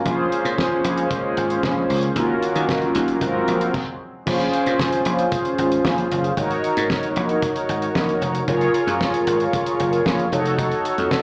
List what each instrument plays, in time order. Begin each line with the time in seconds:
Already playing: analog synth pad A#3
0.05 slap bass A#1, analog synth pad G#3 C#4, analog polysynth C#4 F4 G#4 C5, kick, closed hi-hat
0.32 closed hi-hat
0.45 slap bass A#2, closed hi-hat
0.58 kick, snare
0.84 slap bass A#1, closed hi-hat
0.97 closed hi-hat
1.11 kick, closed hi-hat
1.37 slap bass G#1, closed hi-hat
1.50 closed hi-hat
1.63 slap bass A#1, kick, snare
1.90 slap bass C#2, open hi-hat
2.03 closed hi-hat
2.15 slap bass D#2, analog synth pad D#3 F#3 A#3, analog polysynth C#4 F4 F#4 A#4, kick, closed hi-hat
2.43 closed hi-hat
2.56 slap bass D#3, closed hi-hat
2.69 kick, snare
2.82 closed hi-hat
2.95 slap bass D#2, closed hi-hat
3.08 closed hi-hat
3.21 slap bass G#1, analog polysynth C4 F4 F#4 A#4, kick, closed hi-hat
3.48 slap bass A#1, closed hi-hat
3.61 closed hi-hat
3.74 kick, crash
4.25 slap bass A#1, analog polysynth C#4 F4 G#4 C5, kick, crash
4.40 closed hi-hat
4.53 closed hi-hat
4.66 slap bass A#2, closed hi-hat
4.80 kick, snare
4.92 closed hi-hat
5.05 slap bass A#1, closed hi-hat
5.19 closed hi-hat
5.32 kick, closed hi-hat
5.45 closed hi-hat
5.58 slap bass G#1, closed hi-hat
5.72 closed hi-hat
5.85 slap bass A#1, kick, snare
5.98 closed hi-hat
6.11 slap bass F#1, closed hi-hat
6.24 closed hi-hat
6.36 slap bass G#1, analog polysynth D#4 F#4 A#4 C#5, kick, closed hi-hat
6.51 closed hi-hat
6.64 closed hi-hat
6.77 slap bass G#2, closed hi-hat
6.90 kick, snare
7.03 closed hi-hat
7.16 slap bass A#1, closed hi-hat
7.29 closed hi-hat
7.42 kick, closed hi-hat
7.56 closed hi-hat
7.69 slap bass G#1, closed hi-hat
7.82 closed hi-hat
7.95 slap bass A#1, kick, snare
8.09 closed hi-hat
8.21 slap bass F1, closed hi-hat
8.35 closed hi-hat
8.47 slap bass F#1, analog polysynth F4 G#4 A#4 C#5, kick, closed hi-hat
8.61 closed hi-hat
8.74 closed hi-hat
8.87 slap bass F#2, closed hi-hat
9.01 kick, snare
9.14 closed hi-hat
9.27 slap bass G#1, closed hi-hat
9.40 closed hi-hat
9.53 kick, closed hi-hat
9.66 closed hi-hat
9.80 slap bass F#1, closed hi-hat
9.93 closed hi-hat
10.06 slap bass A#1, kick, snare
10.19 closed hi-hat
10.31 slap bass F1, analog polysynth D#4 F#4 A4 C#5, closed hi-hat
10.46 closed hi-hat
10.59 kick, closed hi-hat
10.72 closed hi-hat
10.85 closed hi-hat
10.98 slap bass F2, closed hi-hat
11.11 kick, snare